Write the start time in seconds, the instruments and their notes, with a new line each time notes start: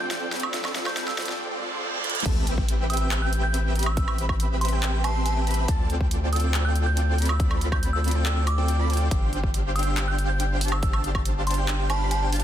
Already playing: ambient pad A3 D4 F4 C5, supersaw synth C4 F4 A4 D5 G5, riser
0.00 synth bell G6
0.11 snare, closed hi-hat
0.32 supersaw synth C4 F4 A4 D5 B5, snare, closed hi-hat
0.36 closed hi-hat
0.40 synth bell E6, closed hi-hat, high woodblock
0.54 snare, closed hi-hat
0.65 snare, high woodblock
0.76 supersaw synth C4 F4 A4 D5 B5, snare, closed hi-hat
0.86 synth bell G6, snare, high woodblock
0.97 snare, closed hi-hat
1.08 synth bell E6, snare
1.18 snare, closed hi-hat
1.22 closed hi-hat
1.25 supersaw synth C4 F4 A4 D5 G5, snare, closed hi-hat
1.40 reverse cymbal
1.51 supersaw synth C4 F4 A4 D5 G5
1.61 supersaw synth C4 F4 A4 D5 C6
1.93 supersaw synth C4 F4 A4 D5 G5
2.04 supersaw synth C4 F4 A4 D5 B5, closed hi-hat
2.10 closed hi-hat
2.15 closed hi-hat
2.20 closed hi-hat
2.26 sub bass A1, supersaw synth C4 G4 B4 E5 A5, digital synth lead A5, kick, closed hi-hat, crash, sub drop
2.47 supersaw synth C4 G4 B4 E5 G5, digital synth lead G5, closed hi-hat
2.58 kick
2.69 closed hi-hat
2.90 synth bell E6, closed hi-hat
2.93 closed hi-hat
2.97 supersaw synth C4 G4 B4 E5 G5, digital synth lead G5, closed hi-hat
3.11 clap, closed hi-hat
3.22 supersaw synth C4 G4 B4 E5 G5, digital synth lead G5, synth bell G6
3.33 closed hi-hat
3.43 synth bell G6
3.54 closed hi-hat
3.75 supersaw synth C4 G4 B4 E5 B5, digital synth lead B5, closed hi-hat
3.79 closed hi-hat
3.83 synth bell E6, closed hi-hat, high woodblock
3.97 synth bell E6, kick, closed hi-hat
4.08 synth bell E6, high woodblock
4.18 supersaw synth C4 G4 B4 E5 B5, digital synth lead B5, closed hi-hat
4.29 kick, high woodblock
4.40 closed hi-hat
4.61 synth bell C6, closed hi-hat
4.65 closed hi-hat
4.68 supersaw synth C4 G4 B4 E5 G5, digital synth lead G5, closed hi-hat
4.83 clap, closed hi-hat
4.93 supersaw synth C4 G4 B4 E5 G5, digital synth lead G5
5.04 supersaw synth C4 G4 B4 E5 C6, synth bell A5, digital synth lead C6, closed hi-hat, high woodblock
5.26 synth bell A5, closed hi-hat
5.36 supersaw synth C4 G4 B4 E5 G5, digital synth lead G5
5.47 supersaw synth C4 G4 B4 E5 B5, digital synth lead B5, closed hi-hat
5.51 closed hi-hat
5.54 closed hi-hat
5.68 sub bass D2, supersaw synth C4 F4 A4 D5 A5, digital synth lead A5, kick, closed hi-hat
5.90 supersaw synth C4 F4 A4 D5 G5, digital synth lead G5, closed hi-hat
6.01 kick
6.11 closed hi-hat
6.33 synth bell E6, closed hi-hat
6.36 closed hi-hat
6.40 supersaw synth C4 F4 A4 D5 G5, digital synth lead G5, closed hi-hat
6.54 clap, closed hi-hat
6.65 supersaw synth C4 F4 A4 D5 G5, digital synth lead G5, synth bell G6
6.76 closed hi-hat
6.86 synth bell G6
6.97 closed hi-hat
7.18 supersaw synth C4 F4 A4 D5 B5, digital synth lead B5, closed hi-hat
7.22 closed hi-hat
7.25 synth bell E6, closed hi-hat, high woodblock
7.40 kick, closed hi-hat
7.51 high woodblock
7.61 supersaw synth C4 F4 A4 D5 B5, digital synth lead B5, closed hi-hat
7.72 synth bell G6, kick, high woodblock
7.83 closed hi-hat
7.93 synth bell E6
8.04 closed hi-hat
8.08 closed hi-hat
8.11 supersaw synth C4 F4 A4 D5 G5, digital synth lead G5, closed hi-hat
8.25 synth bell E6, clap, closed hi-hat
8.36 supersaw synth C4 F4 A4 D5 G5, digital synth lead G5, synth bell E6
8.47 synth bell D6, closed hi-hat, high woodblock
8.58 supersaw synth C4 F4 A4 D5 G5, digital synth lead G5
8.68 closed hi-hat
8.79 supersaw synth C4 F4 A4 D5 B5, digital synth lead B5
8.90 supersaw synth C4 F4 A4 D5 G5, digital synth lead G5, closed hi-hat
8.93 closed hi-hat
8.97 closed hi-hat
9.11 sub bass G1, supersaw synth D4 G4 C5 F5 G5, kick, closed hi-hat
9.33 supersaw synth D4 G4 C5 F5 G5, digital synth lead G5, closed hi-hat
9.44 kick
9.54 closed hi-hat
9.76 synth bell E6, closed hi-hat
9.79 closed hi-hat
9.83 supersaw synth D4 G4 C5 F5 G5, digital synth lead G5, closed hi-hat
9.97 clap, closed hi-hat
10.08 supersaw synth D4 G4 C5 F5 G5, digital synth lead G5, synth bell G6
10.18 closed hi-hat
10.29 synth bell G6
10.40 closed hi-hat
10.61 supersaw synth D4 G4 C5 F5 A5, digital synth lead A5, closed hi-hat, open hi-hat
10.68 synth bell E6, closed hi-hat, high woodblock
10.83 synth bell E6, kick, closed hi-hat
10.93 synth bell E6, high woodblock
11.04 supersaw synth D4 G4 C5 F5 A5, digital synth lead A5, closed hi-hat
11.15 kick, high woodblock
11.25 closed hi-hat
11.47 synth bell C6, closed hi-hat
11.51 closed hi-hat
11.54 supersaw synth D4 G4 C5 F5 G5, digital synth lead G5, closed hi-hat
11.68 clap, closed hi-hat
11.79 supersaw synth D4 G4 C5 F5 G5, digital synth lead G5
11.90 supersaw synth D4 G4 C5 F5 B5, synth bell A5, digital synth lead B5, closed hi-hat, high woodblock
12.11 synth bell A5, closed hi-hat
12.22 supersaw synth D4 G4 C5 F5 G5, digital synth lead G5
12.33 supersaw synth D4 G4 C5 F5 A5, digital synth lead A5, closed hi-hat, open hi-hat
12.40 closed hi-hat